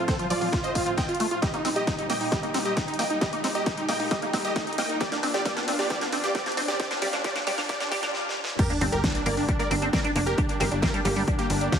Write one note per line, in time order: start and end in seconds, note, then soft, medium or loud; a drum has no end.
0.00 riser medium
0.08 0.24 A2 medium
0.08 0.24 F3 medium
0.08 0.15 C4 medium
0.08 0.24 C4 medium
0.08 0.24 F4 medium
0.08 0.16 A4 medium
0.08 0.16 C5 medium
0.08 kick loud
0.08 snare medium
0.08 closed hi-hat medium
0.19 0.26 F3 medium
0.19 0.27 F4 medium
0.19 closed hi-hat soft
0.30 0.46 A2 medium
0.30 0.33 F3 loud
0.30 0.46 F3 medium
0.30 0.47 C4 medium
0.30 0.38 F4 medium
0.30 0.47 F4 medium
0.30 0.38 D5 medium
0.30 open hi-hat loud
0.41 0.48 F3 medium
0.41 0.49 F4 medium
0.41 open hi-hat medium
0.52 0.69 A2 medium
0.52 0.69 F3 medium
0.52 0.69 C4 medium
0.52 0.60 F4 medium
0.52 0.55 F4 medium
0.52 0.69 F4 medium
0.52 kick loud
0.52 snare medium
0.52 closed hi-hat medium
0.64 0.72 C5 medium
0.64 0.72 D#5 medium
0.64 closed hi-hat medium
0.75 0.91 A2 medium
0.75 0.91 F3 medium
0.75 0.91 C4 medium
0.75 0.83 F4 medium
0.75 0.91 F4 medium
0.75 kick medium
0.75 open hi-hat loud
0.86 0.94 F4 medium
0.86 closed hi-hat soft
0.97 1.02 C4 loud
0.97 1.05 D#5 medium
0.97 1.05 G5 medium
0.97 kick loud
0.97 snare medium
0.97 closed hi-hat medium
1.08 1.16 F4 medium
1.08 closed hi-hat soft
1.15 closed hi-hat medium
1.20 1.27 A3 loud
1.20 1.28 F4 medium
1.20 open hi-hat loud
1.31 1.39 A2 medium
1.31 1.39 F3 medium
1.31 1.39 C4 medium
1.31 1.39 F4 medium
1.31 1.36 F4 medium
1.31 1.39 F4 medium
1.31 closed hi-hat soft
1.42 1.58 A#2 medium
1.42 1.47 G3 medium
1.42 1.58 G3 medium
1.42 1.58 D#4 medium
1.42 1.50 G4 medium
1.42 1.58 G4 medium
1.42 1.50 D#5 medium
1.42 kick loud
1.42 snare medium
1.42 closed hi-hat medium
1.54 1.56 A#3 medium
1.54 1.61 D#4 medium
1.54 closed hi-hat medium
1.65 1.81 A#2 medium
1.65 1.81 G3 medium
1.65 1.69 C4 loud
1.65 1.73 D#4 medium
1.65 1.81 D#4 medium
1.65 1.81 G4 medium
1.65 snare medium
1.65 open hi-hat loud
1.76 1.84 G4 medium
1.76 1.84 D#5 medium
1.76 closed hi-hat medium
1.87 2.03 A#2 medium
1.87 2.03 G3 medium
1.87 1.95 D#4 medium
1.87 2.03 D#4 medium
1.87 2.03 G4 medium
1.87 kick loud
1.87 snare medium
1.87 closed hi-hat medium
1.98 2.06 D#4 medium
1.98 closed hi-hat soft
2.09 2.25 A#2 medium
2.09 2.25 G3 medium
2.09 2.14 A#3 medium
2.09 2.25 D#4 medium
2.09 2.25 G4 medium
2.09 2.17 D#5 medium
2.09 2.17 G5 medium
2.09 snare medium
2.09 open hi-hat loud
2.21 2.29 D#4 medium
2.21 open hi-hat medium
2.32 2.48 A#2 medium
2.32 2.48 G3 medium
2.32 2.36 G3 medium
2.32 2.48 D#4 medium
2.32 2.40 G4 medium
2.32 2.48 G4 loud
2.32 2.40 D#5 loud
2.32 kick loud
2.32 snare medium
2.32 closed hi-hat medium
2.43 2.46 A#3 medium
2.43 2.51 D#4 medium
2.43 closed hi-hat soft
2.54 2.70 A#2 medium
2.54 2.70 G3 medium
2.54 2.59 C4 medium
2.54 2.62 D#4 medium
2.54 2.70 D#4 medium
2.54 2.70 G4 medium
2.54 snare medium
2.54 open hi-hat loud
2.65 2.73 G4 medium
2.65 2.73 D#5 medium
2.65 closed hi-hat soft
2.77 2.84 D#4 medium
2.77 kick loud
2.77 snare medium
2.77 closed hi-hat medium
2.88 2.96 D#4 medium
2.88 closed hi-hat soft
2.94 closed hi-hat medium
2.99 3.04 A#3 medium
2.99 3.07 D#5 medium
2.99 3.07 G5 medium
2.99 snare medium
2.99 open hi-hat loud
3.10 3.18 A#2 medium
3.10 3.18 G3 medium
3.10 3.18 D#4 medium
3.10 3.18 G4 medium
3.10 closed hi-hat soft
3.21 3.37 A#2 medium
3.21 3.26 G3 medium
3.21 3.37 G3 medium
3.21 3.37 D#4 medium
3.21 3.29 G4 medium
3.21 3.37 G4 medium
3.21 3.29 D#5 loud
3.21 kick loud
3.21 snare medium
3.21 closed hi-hat medium
3.33 3.35 A#3 loud
3.33 3.41 D#4 medium
3.33 closed hi-hat medium
3.44 3.60 A#2 medium
3.44 3.60 G3 medium
3.44 3.48 C4 loud
3.44 3.52 D#4 medium
3.44 3.60 D#4 medium
3.44 3.60 G4 medium
3.44 snare medium
3.44 open hi-hat loud
3.55 3.63 G4 medium
3.55 3.63 D#5 medium
3.55 closed hi-hat medium
3.66 3.82 A#2 loud
3.66 3.82 G3 medium
3.66 3.74 D#4 medium
3.66 3.82 D#4 medium
3.66 3.82 G4 medium
3.66 kick loud
3.66 snare medium
3.66 closed hi-hat medium
3.77 3.85 D#4 medium
3.77 closed hi-hat soft
3.88 4.04 A#2 medium
3.88 4.04 G3 medium
3.88 3.93 A#3 medium
3.88 4.04 D#4 medium
3.88 4.04 G4 medium
3.88 3.96 D#5 medium
3.88 3.96 G5 medium
3.88 snare medium
3.88 open hi-hat loud
4.00 4.08 D#4 medium
4.00 open hi-hat medium
4.11 4.27 A#2 loud
4.11 4.27 G3 medium
4.11 4.15 G3 medium
4.11 4.27 D#4 medium
4.11 4.19 G4 medium
4.11 4.27 G4 medium
4.11 4.19 D#5 loud
4.11 kick loud
4.11 snare medium
4.11 closed hi-hat medium
4.22 4.25 A#3 loud
4.22 4.30 D#4 medium
4.22 closed hi-hat medium
4.33 4.49 A#2 medium
4.33 4.49 G3 medium
4.33 4.38 C4 medium
4.33 4.41 D#4 medium
4.33 4.49 D#4 medium
4.33 4.49 G4 medium
4.33 kick medium
4.33 snare medium
4.33 open hi-hat loud
4.45 4.52 G4 medium
4.45 4.52 D#5 medium
4.45 closed hi-hat medium
4.56 4.64 D#4 medium
4.56 kick loud
4.56 snare medium
4.56 closed hi-hat medium
4.67 4.75 D#4 medium
4.67 closed hi-hat soft
4.73 closed hi-hat medium
4.78 4.83 A#3 medium
4.78 4.86 D#5 medium
4.78 4.86 G5 medium
4.78 snare medium
4.78 open hi-hat loud
4.89 4.97 A#2 medium
4.89 4.97 G3 medium
4.89 4.97 D#4 medium
4.89 4.97 G4 medium
4.89 closed hi-hat medium
5.00 5.16 A#2 medium
5.00 5.16 F3 medium
5.00 5.05 G3 medium
5.00 5.17 D4 medium
5.00 5.17 F4 medium
5.00 5.08 G4 medium
5.00 5.08 D5 loud
5.00 kick loud
5.00 snare medium
5.00 closed hi-hat medium
5.12 5.14 A#3 loud
5.12 5.20 D4 medium
5.12 snare medium
5.12 closed hi-hat medium
5.23 5.39 A#2 medium
5.23 5.39 F3 medium
5.23 5.27 C4 loud
5.23 5.31 D4 medium
5.23 5.39 D4 medium
5.23 5.39 F4 medium
5.23 snare medium
5.23 open hi-hat medium
5.34 5.42 G4 medium
5.34 5.42 D5 medium
5.34 snare medium
5.34 closed hi-hat medium
5.45 5.61 A#2 medium
5.45 5.61 F3 medium
5.45 5.50 G3 medium
5.45 5.61 D4 medium
5.45 5.61 F4 medium
5.45 5.53 G4 medium
5.45 5.53 D5 loud
5.45 kick loud
5.45 snare loud
5.45 closed hi-hat medium
5.57 5.59 A#3 loud
5.57 5.64 D4 medium
5.57 snare medium
5.57 closed hi-hat medium
5.68 5.83 A#2 medium
5.68 5.84 F3 medium
5.68 5.72 C4 loud
5.68 5.83 D4 medium
5.68 5.76 D4 medium
5.68 5.83 F4 medium
5.68 snare medium
5.68 open hi-hat loud
5.79 5.87 G4 medium
5.79 5.87 D5 medium
5.79 snare medium
5.79 open hi-hat medium
5.90 6.06 A#2 medium
5.90 6.06 F3 medium
5.90 5.95 G3 medium
5.90 6.06 D4 medium
5.90 6.06 F4 medium
5.90 5.98 G4 medium
5.90 5.98 D5 loud
5.90 kick loud
5.90 snare medium
5.90 closed hi-hat medium
6.01 6.04 A#3 loud
6.01 6.09 D4 medium
6.01 snare medium
6.01 closed hi-hat medium
6.12 6.28 A#2 medium
6.12 6.28 F3 medium
6.12 6.17 C4 loud
6.12 6.20 D4 medium
6.12 6.28 D4 medium
6.12 6.28 F4 medium
6.12 snare loud
6.12 open hi-hat loud
6.24 6.32 G4 medium
6.24 6.32 D5 medium
6.24 snare medium
6.24 closed hi-hat medium
6.35 6.39 G3 medium
6.35 6.43 G4 medium
6.35 6.43 D5 loud
6.35 kick loud
6.35 snare loud
6.35 closed hi-hat medium
6.46 6.49 A#3 loud
6.46 6.54 D4 medium
6.46 snare medium
6.46 closed hi-hat soft
6.52 closed hi-hat medium
6.57 6.62 C4 loud
6.57 6.65 D4 medium
6.57 snare loud
6.57 open hi-hat loud
6.68 6.76 A#2 medium
6.68 6.76 F3 medium
6.68 6.76 D4 medium
6.68 6.76 F4 medium
6.68 6.76 G4 medium
6.68 6.76 D5 medium
6.68 snare medium
6.68 closed hi-hat medium
6.80 6.96 A#2 medium
6.80 6.96 F3 medium
6.80 6.84 G3 medium
6.80 6.96 D4 medium
6.80 6.96 F4 medium
6.80 6.87 G4 medium
6.80 6.87 D5 loud
6.80 kick loud
6.80 snare loud
6.80 closed hi-hat medium
6.91 6.94 A#3 loud
6.91 6.99 D4 medium
6.91 snare loud
6.91 closed hi-hat medium
7.02 7.18 A#2 medium
7.02 7.18 F3 medium
7.02 7.06 G3 medium
7.02 7.18 D4 medium
7.02 7.18 F4 medium
7.02 7.10 G4 medium
7.02 7.10 D5 loud
7.02 snare loud
7.02 open hi-hat loud
7.13 7.16 A#3 loud
7.13 7.21 D4 medium
7.13 snare medium
7.13 closed hi-hat medium
7.24 7.40 A#2 loud
7.24 7.40 F3 medium
7.24 7.29 G3 medium
7.24 7.40 D4 loud
7.24 7.40 F4 medium
7.24 7.32 G4 medium
7.24 7.32 D5 loud
7.24 kick loud
7.24 snare loud
7.24 closed hi-hat medium
7.36 7.38 A#3 loud
7.36 7.44 D4 medium
7.36 snare medium
7.36 closed hi-hat medium
7.47 7.63 A#2 medium
7.47 7.63 F3 medium
7.47 7.51 G3 medium
7.47 7.63 D4 medium
7.47 7.63 F4 medium
7.47 7.55 G4 medium
7.47 7.55 D5 loud
7.47 snare loud
7.47 open hi-hat loud
7.58 7.61 A#3 loud
7.58 7.66 D4 medium
7.58 snare medium
7.58 open hi-hat medium
7.69 7.85 A#2 medium
7.69 7.85 F3 medium
7.69 7.74 G3 medium
7.69 7.85 D4 medium
7.69 7.85 F4 medium
7.69 7.77 G4 medium
7.69 7.77 D5 loud
7.69 kick loud
7.69 snare loud
7.69 closed hi-hat medium
7.69 swell medium
7.80 7.83 A#3 loud
7.80 7.88 D4 medium
7.80 snare loud
7.80 closed hi-hat medium
7.91 8.07 A#2 medium
7.91 8.07 F3 medium
7.91 7.96 G3 medium
7.91 8.07 D4 medium
7.91 8.07 F4 medium
7.91 7.99 G4 medium
7.91 7.99 D5 loud
7.91 kick medium
7.91 snare loud
7.91 open hi-hat loud
8.03 8.05 A#3 loud
8.03 8.11 D4 medium
8.03 snare loud
8.03 closed hi-hat medium
8.14 snare medium
8.29 snare medium
8.44 snare loud
8.59 8.74 D3 medium
8.59 8.75 G3 medium
8.59 8.63 G3 medium
8.59 8.74 A#3 medium
8.59 8.67 G4 medium
8.59 8.75 G4 medium
8.59 8.67 A#4 loud
8.59 kick loud
8.59 closed hi-hat medium
8.59 crash loud
8.59 sub drop medium
8.70 8.73 A#3 loud
8.70 8.78 D4 medium
8.70 closed hi-hat medium
8.81 8.91 G1 loud
8.81 8.97 D3 medium
8.81 8.97 G3 medium
8.81 8.97 A#3 medium
8.81 8.86 C4 loud
8.81 8.89 D4 medium
8.81 8.97 G4 medium
8.81 open hi-hat loud
8.92 9.11 G1 medium
8.92 9.00 G4 medium
8.92 9.00 A#4 loud
8.92 closed hi-hat medium
9.03 9.19 D3 medium
9.03 9.19 G3 medium
9.03 9.19 A#3 medium
9.03 9.11 D4 medium
9.03 9.19 G4 medium
9.03 kick loud
9.03 snare loud
9.03 closed hi-hat medium
9.15 9.23 D4 medium
9.15 closed hi-hat medium
9.26 9.45 G1 loud
9.26 9.42 D3 medium
9.26 9.42 G3 medium
9.26 9.30 A#3 medium
9.26 9.42 A#3 loud
9.26 9.42 G4 medium
9.26 9.34 A#4 medium
9.26 9.34 D5 loud
9.26 open hi-hat loud
9.37 9.45 D4 medium
9.37 open hi-hat medium
9.48 9.64 D3 medium
9.48 9.51 G3 medium
9.48 9.64 G3 medium
9.48 9.64 A#3 medium
9.48 9.56 D4 medium
9.48 9.64 G4 medium
9.48 kick loud
9.48 closed hi-hat medium
9.59 9.62 A#3 loud
9.59 9.67 A#4 medium
9.59 9.67 D5 medium
9.59 closed hi-hat medium
9.71 9.90 G1 loud
9.71 9.87 D3 medium
9.71 9.87 G3 medium
9.71 9.87 A#3 medium
9.71 9.75 C4 loud
9.71 9.78 D4 medium
9.71 9.87 G4 medium
9.71 open hi-hat loud
9.82 9.89 C4 medium
9.82 9.90 D4 medium
9.82 closed hi-hat medium
9.93 10.00 C4 loud
9.93 10.01 A#4 medium
9.93 10.01 D5 loud
9.93 kick loud
9.93 snare loud
9.93 closed hi-hat medium
10.04 10.12 D4 medium
10.04 10.11 D4 medium
10.04 closed hi-hat medium
10.15 10.34 F1 loud
10.15 10.20 A#3 medium
10.15 10.23 D4 medium
10.15 open hi-hat loud
10.26 10.35 D3 medium
10.26 10.35 G3 medium
10.26 10.35 A#3 medium
10.26 10.34 G4 medium
10.26 10.35 G4 medium
10.26 10.34 A#4 medium
10.26 closed hi-hat medium
10.38 10.54 D3 medium
10.38 10.54 G3 medium
10.38 10.54 A#3 medium
10.38 10.46 D4 medium
10.38 10.41 G4 medium
10.38 10.54 G4 medium
10.38 kick loud
10.38 closed hi-hat medium
10.49 10.57 D4 medium
10.49 closed hi-hat medium
10.60 10.70 G1 loud
10.60 10.76 D3 medium
10.60 10.76 G3 medium
10.60 10.76 A#3 medium
10.60 10.65 C4 loud
10.60 10.68 G4 medium
10.60 10.76 G4 medium
10.60 10.68 A#4 medium
10.60 snare medium
10.60 open hi-hat loud
10.71 10.90 G1 medium
10.71 10.79 D4 medium
10.71 closed hi-hat medium
10.82 10.98 D3 medium
10.82 10.98 G3 medium
10.82 10.98 A#3 loud
10.82 10.89 C4 loud
10.82 10.90 G4 medium
10.82 10.98 G4 medium
10.82 10.90 A#4 medium
10.82 kick loud
10.82 snare loud
10.82 closed hi-hat medium
10.94 11.00 G3 medium
10.94 11.02 D4 medium
10.94 closed hi-hat medium
11.05 11.24 G1 loud
11.05 11.21 D3 medium
11.05 11.21 G3 medium
11.05 11.08 G3 loud
11.05 11.13 A#3 medium
11.05 11.21 A#3 medium
11.05 11.13 G4 loud
11.05 11.21 G4 medium
11.05 open hi-hat loud
11.16 11.23 G3 medium
11.16 11.24 D4 medium
11.16 open hi-hat medium
11.27 11.43 D3 loud
11.27 11.43 G3 medium
11.27 11.43 A#3 medium
11.27 11.35 D4 medium
11.27 11.30 G4 medium
11.27 11.43 G4 medium
11.27 kick loud
11.27 closed hi-hat medium
11.38 11.46 A#3 medium
11.38 11.46 G4 loud
11.38 closed hi-hat medium
11.50 11.69 G1 medium
11.50 11.66 D3 loud
11.50 11.66 G3 medium
11.50 11.66 A#3 medium
11.50 11.58 D4 medium
11.50 11.66 G4 medium
11.50 open hi-hat loud
11.61 11.69 D4 medium
11.61 closed hi-hat medium
11.72 11.79 D4 medium
11.72 11.79 F4 loud
11.72 11.79 G4 medium
11.72 kick loud
11.72 snare loud
11.72 closed hi-hat medium